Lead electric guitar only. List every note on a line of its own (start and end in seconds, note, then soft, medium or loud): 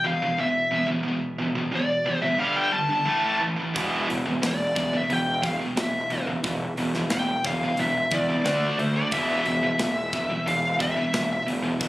0.07 0.40 F5 medium
0.40 0.87 E5 medium
1.75 2.27 D5 medium
2.22 2.39 E5 medium
2.39 2.56 F5 medium
2.56 2.72 G5 loud
2.72 3.41 A5 medium
4.47 4.97 D5 medium
4.97 5.13 E5 medium
5.13 5.46 G5 loud
5.46 5.55 F5 medium
5.81 6.26 E5 medium
7.12 7.46 G5 medium
7.46 7.80 F5 medium
7.80 8.14 E5 loud
8.14 8.79 D5 medium
8.79 8.96 C5 medium
8.96 9.14 D5 medium
9.12 10.51 E5 loud
10.47 10.79 F5 medium
10.82 11.45 E5 medium